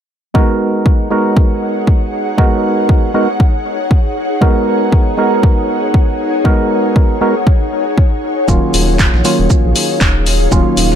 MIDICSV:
0, 0, Header, 1, 5, 480
1, 0, Start_track
1, 0, Key_signature, 5, "minor"
1, 0, Tempo, 508475
1, 329, Time_signature, 4, 2, 24, 8
1, 10341, End_track
2, 0, Start_track
2, 0, Title_t, "Ambient pad"
2, 0, Program_c, 0, 92
2, 329, Note_on_c, 0, 63, 74
2, 543, Note_on_c, 0, 78, 82
2, 548, Note_on_c, 0, 68, 82
2, 714, Note_on_c, 0, 73, 88
2, 8010, Note_off_c, 0, 78, 0
2, 8770, Note_on_c, 0, 77, 76
2, 10341, Note_off_c, 0, 63, 0
2, 10341, Note_off_c, 0, 68, 0
2, 10341, Note_off_c, 0, 73, 0
2, 10341, Note_off_c, 0, 77, 0
2, 10341, End_track
3, 0, Start_track
3, 0, Title_t, "Synth stab"
3, 0, Program_c, 1, 62
3, 323, Note_on_c, 1, 56, 89
3, 326, Note_on_c, 1, 59, 76
3, 329, Note_on_c, 1, 63, 79
3, 332, Note_on_c, 1, 66, 77
3, 335, Note_on_c, 1, 70, 99
3, 1022, Note_off_c, 1, 56, 0
3, 1023, Note_off_c, 1, 59, 0
3, 1025, Note_off_c, 1, 63, 0
3, 1026, Note_off_c, 1, 66, 0
3, 1028, Note_off_c, 1, 70, 0
3, 1043, Note_on_c, 1, 56, 73
3, 1046, Note_on_c, 1, 59, 65
3, 1049, Note_on_c, 1, 63, 68
3, 1052, Note_on_c, 1, 66, 67
3, 1055, Note_on_c, 1, 70, 82
3, 2222, Note_off_c, 1, 56, 0
3, 2223, Note_off_c, 1, 59, 0
3, 2225, Note_off_c, 1, 63, 0
3, 2226, Note_off_c, 1, 66, 0
3, 2228, Note_off_c, 1, 70, 0
3, 2243, Note_on_c, 1, 56, 89
3, 2246, Note_on_c, 1, 59, 85
3, 2249, Note_on_c, 1, 63, 82
3, 2252, Note_on_c, 1, 66, 87
3, 2255, Note_on_c, 1, 70, 99
3, 2942, Note_off_c, 1, 56, 0
3, 2943, Note_off_c, 1, 59, 0
3, 2945, Note_off_c, 1, 63, 0
3, 2946, Note_off_c, 1, 66, 0
3, 2948, Note_off_c, 1, 70, 0
3, 2966, Note_on_c, 1, 56, 80
3, 2967, Note_on_c, 1, 59, 71
3, 2969, Note_on_c, 1, 63, 74
3, 2970, Note_on_c, 1, 66, 71
3, 2972, Note_on_c, 1, 70, 86
3, 3091, Note_off_c, 1, 56, 0
3, 3092, Note_off_c, 1, 59, 0
3, 3092, Note_off_c, 1, 63, 0
3, 3093, Note_off_c, 1, 66, 0
3, 3094, Note_off_c, 1, 70, 0
3, 4163, Note_on_c, 1, 56, 91
3, 4166, Note_on_c, 1, 59, 78
3, 4169, Note_on_c, 1, 63, 82
3, 4172, Note_on_c, 1, 66, 81
3, 4175, Note_on_c, 1, 70, 98
3, 4862, Note_off_c, 1, 56, 0
3, 4863, Note_off_c, 1, 59, 0
3, 4865, Note_off_c, 1, 63, 0
3, 4866, Note_off_c, 1, 66, 0
3, 4868, Note_off_c, 1, 70, 0
3, 4883, Note_on_c, 1, 56, 74
3, 4886, Note_on_c, 1, 59, 70
3, 4890, Note_on_c, 1, 63, 66
3, 4892, Note_on_c, 1, 66, 65
3, 4895, Note_on_c, 1, 70, 86
3, 6062, Note_off_c, 1, 56, 0
3, 6063, Note_off_c, 1, 59, 0
3, 6065, Note_off_c, 1, 63, 0
3, 6066, Note_off_c, 1, 66, 0
3, 6068, Note_off_c, 1, 70, 0
3, 6083, Note_on_c, 1, 56, 95
3, 6086, Note_on_c, 1, 59, 89
3, 6089, Note_on_c, 1, 63, 87
3, 6092, Note_on_c, 1, 66, 84
3, 6095, Note_on_c, 1, 70, 104
3, 6782, Note_off_c, 1, 56, 0
3, 6783, Note_off_c, 1, 59, 0
3, 6785, Note_off_c, 1, 63, 0
3, 6786, Note_off_c, 1, 66, 0
3, 6788, Note_off_c, 1, 70, 0
3, 6806, Note_on_c, 1, 56, 83
3, 6808, Note_on_c, 1, 59, 74
3, 6809, Note_on_c, 1, 63, 71
3, 6811, Note_on_c, 1, 66, 75
3, 6812, Note_on_c, 1, 70, 91
3, 6931, Note_off_c, 1, 56, 0
3, 6932, Note_off_c, 1, 59, 0
3, 6932, Note_off_c, 1, 63, 0
3, 6933, Note_off_c, 1, 66, 0
3, 6934, Note_off_c, 1, 70, 0
3, 8003, Note_on_c, 1, 51, 90
3, 8006, Note_on_c, 1, 54, 76
3, 8010, Note_on_c, 1, 58, 78
3, 8012, Note_on_c, 1, 61, 81
3, 8015, Note_on_c, 1, 65, 95
3, 8702, Note_off_c, 1, 51, 0
3, 8703, Note_off_c, 1, 54, 0
3, 8705, Note_off_c, 1, 58, 0
3, 8707, Note_off_c, 1, 61, 0
3, 8708, Note_off_c, 1, 65, 0
3, 8724, Note_on_c, 1, 51, 75
3, 8727, Note_on_c, 1, 54, 71
3, 8730, Note_on_c, 1, 58, 71
3, 8733, Note_on_c, 1, 61, 69
3, 8736, Note_on_c, 1, 65, 81
3, 9902, Note_off_c, 1, 51, 0
3, 9904, Note_off_c, 1, 54, 0
3, 9905, Note_off_c, 1, 58, 0
3, 9907, Note_off_c, 1, 61, 0
3, 9908, Note_off_c, 1, 65, 0
3, 9923, Note_on_c, 1, 51, 92
3, 9926, Note_on_c, 1, 54, 86
3, 9929, Note_on_c, 1, 58, 84
3, 9932, Note_on_c, 1, 61, 84
3, 9935, Note_on_c, 1, 65, 101
3, 10341, Note_off_c, 1, 51, 0
3, 10341, Note_off_c, 1, 54, 0
3, 10341, Note_off_c, 1, 58, 0
3, 10341, Note_off_c, 1, 61, 0
3, 10341, Note_off_c, 1, 65, 0
3, 10341, End_track
4, 0, Start_track
4, 0, Title_t, "Analog synth bass"
4, 0, Program_c, 2, 38
4, 8009, Note_on_c, 2, 27, 93
4, 8116, Note_off_c, 2, 27, 0
4, 8249, Note_on_c, 2, 27, 78
4, 8577, Note_off_c, 2, 27, 0
4, 8628, Note_on_c, 2, 34, 90
4, 8706, Note_off_c, 2, 34, 0
4, 8868, Note_on_c, 2, 27, 83
4, 8946, Note_off_c, 2, 27, 0
4, 9108, Note_on_c, 2, 34, 86
4, 9186, Note_off_c, 2, 34, 0
4, 9449, Note_on_c, 2, 27, 86
4, 9892, Note_off_c, 2, 27, 0
4, 9929, Note_on_c, 2, 27, 93
4, 10036, Note_off_c, 2, 27, 0
4, 10169, Note_on_c, 2, 27, 78
4, 10341, Note_off_c, 2, 27, 0
4, 10341, End_track
5, 0, Start_track
5, 0, Title_t, "Drums"
5, 329, Note_on_c, 9, 36, 105
5, 424, Note_off_c, 9, 36, 0
5, 809, Note_on_c, 9, 36, 103
5, 904, Note_off_c, 9, 36, 0
5, 1289, Note_on_c, 9, 36, 116
5, 1384, Note_off_c, 9, 36, 0
5, 1769, Note_on_c, 9, 36, 96
5, 1864, Note_off_c, 9, 36, 0
5, 2249, Note_on_c, 9, 36, 115
5, 2344, Note_off_c, 9, 36, 0
5, 2729, Note_on_c, 9, 36, 104
5, 2824, Note_off_c, 9, 36, 0
5, 3209, Note_on_c, 9, 36, 117
5, 3304, Note_off_c, 9, 36, 0
5, 3689, Note_on_c, 9, 36, 102
5, 3783, Note_off_c, 9, 36, 0
5, 4169, Note_on_c, 9, 36, 112
5, 4263, Note_off_c, 9, 36, 0
5, 4649, Note_on_c, 9, 36, 108
5, 4743, Note_off_c, 9, 36, 0
5, 5129, Note_on_c, 9, 36, 118
5, 5223, Note_off_c, 9, 36, 0
5, 5609, Note_on_c, 9, 36, 103
5, 5703, Note_off_c, 9, 36, 0
5, 6089, Note_on_c, 9, 36, 114
5, 6183, Note_off_c, 9, 36, 0
5, 6569, Note_on_c, 9, 36, 106
5, 6663, Note_off_c, 9, 36, 0
5, 7049, Note_on_c, 9, 36, 115
5, 7143, Note_off_c, 9, 36, 0
5, 7529, Note_on_c, 9, 36, 102
5, 7624, Note_off_c, 9, 36, 0
5, 8009, Note_on_c, 9, 36, 110
5, 8009, Note_on_c, 9, 82, 85
5, 8103, Note_off_c, 9, 82, 0
5, 8104, Note_off_c, 9, 36, 0
5, 8249, Note_on_c, 9, 82, 63
5, 8250, Note_on_c, 9, 46, 95
5, 8344, Note_off_c, 9, 46, 0
5, 8344, Note_off_c, 9, 82, 0
5, 8489, Note_on_c, 9, 36, 100
5, 8489, Note_on_c, 9, 38, 113
5, 8489, Note_on_c, 9, 82, 88
5, 8491, Note_on_c, 9, 39, 105
5, 8584, Note_off_c, 9, 36, 0
5, 8584, Note_off_c, 9, 38, 0
5, 8584, Note_off_c, 9, 82, 0
5, 8585, Note_off_c, 9, 39, 0
5, 8628, Note_on_c, 9, 38, 51
5, 8722, Note_off_c, 9, 38, 0
5, 8729, Note_on_c, 9, 82, 66
5, 8730, Note_on_c, 9, 46, 101
5, 8824, Note_off_c, 9, 46, 0
5, 8824, Note_off_c, 9, 82, 0
5, 8969, Note_on_c, 9, 36, 114
5, 8970, Note_on_c, 9, 82, 86
5, 9064, Note_off_c, 9, 36, 0
5, 9064, Note_off_c, 9, 82, 0
5, 9209, Note_on_c, 9, 82, 66
5, 9210, Note_on_c, 9, 46, 104
5, 9304, Note_off_c, 9, 46, 0
5, 9304, Note_off_c, 9, 82, 0
5, 9449, Note_on_c, 9, 36, 103
5, 9449, Note_on_c, 9, 38, 113
5, 9449, Note_on_c, 9, 82, 81
5, 9451, Note_on_c, 9, 39, 111
5, 9544, Note_off_c, 9, 36, 0
5, 9544, Note_off_c, 9, 38, 0
5, 9544, Note_off_c, 9, 82, 0
5, 9546, Note_off_c, 9, 39, 0
5, 9689, Note_on_c, 9, 82, 64
5, 9690, Note_on_c, 9, 46, 102
5, 9784, Note_off_c, 9, 46, 0
5, 9784, Note_off_c, 9, 82, 0
5, 9929, Note_on_c, 9, 36, 109
5, 9929, Note_on_c, 9, 82, 89
5, 10024, Note_off_c, 9, 36, 0
5, 10024, Note_off_c, 9, 82, 0
5, 10169, Note_on_c, 9, 46, 95
5, 10170, Note_on_c, 9, 82, 63
5, 10264, Note_off_c, 9, 46, 0
5, 10264, Note_off_c, 9, 82, 0
5, 10308, Note_on_c, 9, 38, 56
5, 10341, Note_off_c, 9, 38, 0
5, 10341, End_track
0, 0, End_of_file